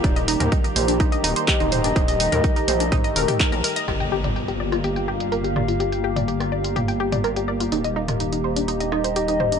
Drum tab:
HH |xxoxxxoxxxoxxxox|xooxxxoxxxoxxxox|xx-xxx-xxx-xxx-x|xx-xxx-xxx-xxx-x|
CP |------------x---|------------x---|----------------|----------------|
SD |----------------|----------------|r------r------r-|-----r------r---|
T2 |---o----------o-|---o----o--o----|---o----------o-|---o----o--o----|
BD |o---o---o---o---|o---o---o---o---|----------------|----------------|

HH |xx-xxx-xxx-xxx-x|
CP |----------------|
SD |---r------r-----|
T2 |---o----------o-|
BD |----------------|